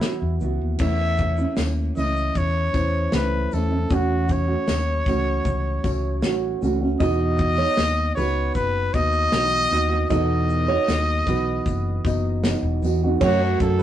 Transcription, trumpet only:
0, 0, Header, 1, 2, 480
1, 0, Start_track
1, 0, Tempo, 776197
1, 498, Time_signature, 4, 2, 24, 8
1, 8551, End_track
2, 0, Start_track
2, 0, Title_t, "Trumpet"
2, 0, Program_c, 0, 56
2, 0, Note_on_c, 0, 64, 73
2, 230, Note_off_c, 0, 64, 0
2, 504, Note_on_c, 0, 76, 100
2, 956, Note_off_c, 0, 76, 0
2, 1222, Note_on_c, 0, 75, 87
2, 1467, Note_on_c, 0, 73, 97
2, 1476, Note_off_c, 0, 75, 0
2, 1941, Note_off_c, 0, 73, 0
2, 1948, Note_on_c, 0, 71, 82
2, 2187, Note_on_c, 0, 69, 79
2, 2196, Note_off_c, 0, 71, 0
2, 2436, Note_on_c, 0, 66, 83
2, 2446, Note_off_c, 0, 69, 0
2, 2673, Note_on_c, 0, 73, 84
2, 2683, Note_off_c, 0, 66, 0
2, 4102, Note_off_c, 0, 73, 0
2, 4331, Note_on_c, 0, 75, 114
2, 5027, Note_off_c, 0, 75, 0
2, 5041, Note_on_c, 0, 73, 91
2, 5270, Note_off_c, 0, 73, 0
2, 5288, Note_on_c, 0, 71, 94
2, 5530, Note_on_c, 0, 75, 116
2, 5539, Note_off_c, 0, 71, 0
2, 6246, Note_off_c, 0, 75, 0
2, 6250, Note_on_c, 0, 75, 98
2, 7668, Note_off_c, 0, 75, 0
2, 8187, Note_on_c, 0, 66, 92
2, 8405, Note_off_c, 0, 66, 0
2, 8419, Note_on_c, 0, 69, 87
2, 8551, Note_off_c, 0, 69, 0
2, 8551, End_track
0, 0, End_of_file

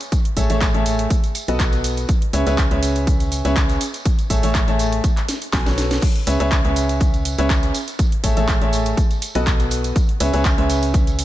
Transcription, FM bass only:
0, 0, Header, 1, 2, 480
1, 0, Start_track
1, 0, Key_signature, 4, "minor"
1, 0, Tempo, 491803
1, 119, Time_signature, 4, 2, 24, 8
1, 10976, End_track
2, 0, Start_track
2, 0, Title_t, "FM bass"
2, 0, Program_c, 0, 39
2, 358, Note_on_c, 0, 33, 93
2, 461, Note_off_c, 0, 33, 0
2, 487, Note_on_c, 0, 33, 91
2, 702, Note_off_c, 0, 33, 0
2, 727, Note_on_c, 0, 33, 97
2, 1043, Note_off_c, 0, 33, 0
2, 1446, Note_on_c, 0, 35, 90
2, 2003, Note_off_c, 0, 35, 0
2, 2277, Note_on_c, 0, 37, 97
2, 2381, Note_off_c, 0, 37, 0
2, 2406, Note_on_c, 0, 37, 90
2, 2621, Note_off_c, 0, 37, 0
2, 2646, Note_on_c, 0, 37, 93
2, 3341, Note_off_c, 0, 37, 0
2, 3366, Note_on_c, 0, 37, 89
2, 3682, Note_off_c, 0, 37, 0
2, 4198, Note_on_c, 0, 33, 93
2, 4301, Note_off_c, 0, 33, 0
2, 4327, Note_on_c, 0, 33, 94
2, 4541, Note_off_c, 0, 33, 0
2, 4567, Note_on_c, 0, 33, 99
2, 4883, Note_off_c, 0, 33, 0
2, 5398, Note_on_c, 0, 35, 96
2, 5502, Note_off_c, 0, 35, 0
2, 5527, Note_on_c, 0, 35, 98
2, 5843, Note_off_c, 0, 35, 0
2, 6119, Note_on_c, 0, 37, 99
2, 6222, Note_off_c, 0, 37, 0
2, 6248, Note_on_c, 0, 37, 90
2, 6462, Note_off_c, 0, 37, 0
2, 6487, Note_on_c, 0, 37, 93
2, 7182, Note_off_c, 0, 37, 0
2, 7207, Note_on_c, 0, 37, 88
2, 7523, Note_off_c, 0, 37, 0
2, 8039, Note_on_c, 0, 33, 92
2, 8142, Note_off_c, 0, 33, 0
2, 8168, Note_on_c, 0, 33, 95
2, 8382, Note_off_c, 0, 33, 0
2, 8407, Note_on_c, 0, 33, 101
2, 8723, Note_off_c, 0, 33, 0
2, 9127, Note_on_c, 0, 35, 91
2, 9683, Note_off_c, 0, 35, 0
2, 9959, Note_on_c, 0, 37, 92
2, 10062, Note_off_c, 0, 37, 0
2, 10087, Note_on_c, 0, 37, 92
2, 10301, Note_off_c, 0, 37, 0
2, 10327, Note_on_c, 0, 37, 100
2, 10976, Note_off_c, 0, 37, 0
2, 10976, End_track
0, 0, End_of_file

